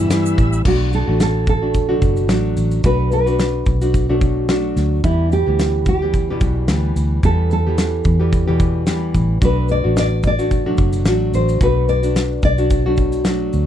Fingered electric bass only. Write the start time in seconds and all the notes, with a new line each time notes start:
Already playing: G2
0.38 A1
0.65 B1
1.08 A1
2.02 F#1
2.30 A1
2.57 A1
2.84 B1
3.67 B1
4.76 D2
5.04 E2
5.47 D2
6.41 B1
6.69 D2
6.96 D2
7.23 E2
8.05 E2
9.15 A1
9.42 B1
9.85 A1
10.78 F#1
11.07 A1
11.33 A1
11.61 B1
12.43 B1
13.54 D2